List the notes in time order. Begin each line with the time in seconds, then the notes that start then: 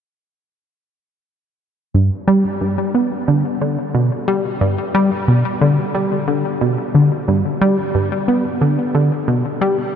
1.94 G2
2.28 G3
2.61 G2
2.95 B3
3.28 D3
3.61 D3
3.95 B2
4.28 G3
4.61 G2
4.95 G3
5.28 B2
5.61 D3
5.95 G3
6.28 D3
6.61 B2
6.95 D3
7.28 G2
7.61 G3
7.95 G2
8.28 B3
8.61 D3
8.95 D3
9.28 B2
9.61 G3